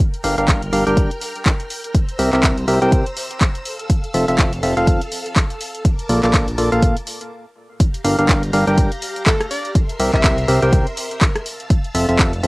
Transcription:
0.00 A#4 G5 F6, kick, closed hi-hat
0.14 closed hi-hat
0.24 G1 G3 D4 G4 A#4 F5, open hi-hat
0.38 G1 G3 D4 G4 A#4 F5, closed hi-hat
0.48 kick, clap, closed hi-hat
0.62 closed hi-hat
0.73 G1 G3 D4 G4 A#4 F5, open hi-hat
0.87 G1 G3 D4 G4 A#4 G5, closed hi-hat
0.97 kick, closed hi-hat
1.11 closed hi-hat
1.21 open hi-hat
1.36 closed hi-hat
1.46 kick, clap, closed hi-hat
1.60 closed hi-hat
1.70 open hi-hat
1.84 closed hi-hat
1.95 C5 A#5 E6, kick, closed hi-hat
2.09 closed hi-hat
2.19 C2 C3 C4 G4 A#4 E5, open hi-hat
2.33 C2 C3 C4 G4 A#4 E5, clap, closed hi-hat
2.43 kick, clap, closed hi-hat
2.58 closed hi-hat
2.68 C2 C3 C4 G4 A#4 E5, open hi-hat
2.82 C2 C3 C4 G4 A#4 G5, closed hi-hat
2.92 kick, closed hi-hat
3.06 closed hi-hat
3.17 open hi-hat
3.31 closed hi-hat
3.41 kick, clap, closed hi-hat
3.55 closed hi-hat
3.65 A4 F5, open hi-hat
3.79 closed hi-hat
3.90 kick, closed hi-hat
4.04 closed hi-hat
4.14 F1 F3 C4 F4 A4 E5, open hi-hat
4.28 F1 F3 C4 F4 A4 E5, closed hi-hat
4.39 kick, clap, closed hi-hat
4.53 closed hi-hat
4.63 F1 F3 C4 F4 A4 E5, open hi-hat
4.77 F1 F3 C4 F4 A4 F5, closed hi-hat
4.87 kick, closed hi-hat
5.01 closed hi-hat
5.12 open hi-hat
5.26 closed hi-hat
5.36 kick, clap, closed hi-hat
5.50 closed hi-hat
5.61 open hi-hat
5.75 closed hi-hat
5.85 A#4 A5 D6, kick, closed hi-hat
5.99 closed hi-hat
6.09 A#1 A#2 A#3 F4 A4 D5, open hi-hat
6.23 A#1 A#2 A#3 F4 A4 D5, clap, closed hi-hat
6.34 kick, clap, closed hi-hat
6.48 closed hi-hat
6.58 A#1 A#2 A#3 F4 A4 D5, open hi-hat
6.72 A#1 A#2 A#3 F4 A4 F5, closed hi-hat
6.83 kick, closed hi-hat
6.97 closed hi-hat
7.07 open hi-hat
7.21 closed hi-hat
7.80 G4 F5 A#5, kick, closed hi-hat
7.94 closed hi-hat
8.04 G1 G3 D4 G4 A#4 F5, open hi-hat
8.19 G1 G3 D4 G4 A#4 F5, closed hi-hat
8.29 kick, clap, closed hi-hat
8.43 closed hi-hat
8.53 G1 G3 D4 G4 A#4 F5, open hi-hat
8.67 G1 G3 D4 G4 A#4 G5, closed hi-hat
8.78 kick, closed hi-hat
8.92 closed hi-hat
9.02 open hi-hat
9.16 closed hi-hat
9.26 A4, kick, clap, closed hi-hat
9.40 cross-stick, closed hi-hat
9.51 D5, open hi-hat
9.65 closed hi-hat
9.75 A#4 E5 C6, kick, closed hi-hat
9.89 closed hi-hat
10.00 C2 C3 C4 G4 A#4 E5, open hi-hat
10.14 C2 C3 C4 G4 A#4 E5, kick, clap, closed hi-hat
10.24 kick, clap, closed hi-hat
10.38 closed hi-hat
10.48 C2 C3 C4 G4 A#4 E5, open hi-hat
10.62 C2 C3 C4 G4 A#4 G5, closed hi-hat
10.73 kick, closed hi-hat
10.87 closed hi-hat
10.97 open hi-hat
11.11 closed hi-hat
11.21 kick, clap, closed hi-hat
11.36 cross-stick, closed hi-hat
11.46 F5 A5 E6, open hi-hat
11.60 closed hi-hat
11.70 kick, closed hi-hat
11.84 closed hi-hat
11.95 F1 F3 C4 F4 A4 E5, open hi-hat
12.09 F1 F3 C4 F4 A4 E5, closed hi-hat
12.19 kick, clap, closed hi-hat
12.33 closed hi-hat
12.43 F1 F3 C4 F4 A4 E5, open hi-hat

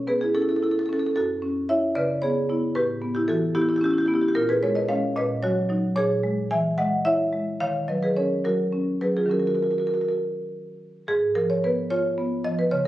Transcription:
Already playing: B2 C#4
0.07 B3 G#4 B4
0.21 E4 G#4
0.34 C#4 E4 A4
0.42 E4 A4
0.49 E4 A4
0.56 A4
0.63 E4 A4
0.71 A4
0.79 A4
0.86 C#4 A4
0.93 A4
0.99 A4
1.06 A4
1.16 F#2 F#4 A4
1.42 C#4
1.69 C#4 E4 C#5 E5
1.95 C#3 B4 D5
2.22 B3 G#4 C#5
2.49 B3 E4
2.75 A2 G4 B4
3.02 B3
3.15 E4 G4
3.28 E3 F#4 A4
3.55 B3 E4 G4
3.62 E4 G4
3.69 E4 G4
3.76 E4 G4
3.81 C#4 G4
3.86 E4
3.91 E4 G4
3.98 E4 G4
4.06 B3 E4 G4
4.14 E4 G4
4.21 E4 G4
4.28 G4
4.35 A#2 F4 A#4
4.49 G#4 B4
4.63 G#3 A#4 C#5
4.75 B4 D#5
4.89 G#3 C#4 C#5 F5
5.16 A#2 B4 D#5
5.43 F#3 F#4 C#5
5.69 F#3 D#4
5.96 A#2 G#4 C#5
6.23 G#3
6.51 E3 E5 G#5
6.78 G#3 D#5 F#5
7.05 E4 C#5 E5
7.33 G#3
7.60 D#3 C#5 F5
7.88 F#3 B4 D#5
8.03 G#4 B4
8.16 C#4 A#4 C#5
8.45 F#3 F#4 A#4
8.72 C#4
9.01 F#3 G#4 B4
9.17 F4 G#4
9.26 D#3 F#3 C#4
9.31 F#4 A#4
9.39 F#4 A#4
9.47 F#4 A#4
9.55 F#4 A#4
9.62 F#4 A#4
9.71 F#4 A#4
9.78 F#4 A#4
9.87 F#4 A#4
9.94 F#4 A#4
10.01 F#4 A#4
10.09 F#4 A#4
11.08 G#2 G#4
11.35 F3 A#4
11.50 C#5
11.64 B3 B4
11.90 F4 C#5
12.18 B3
12.44 F3 D#5
12.59 B4
12.71 C#3 C#5

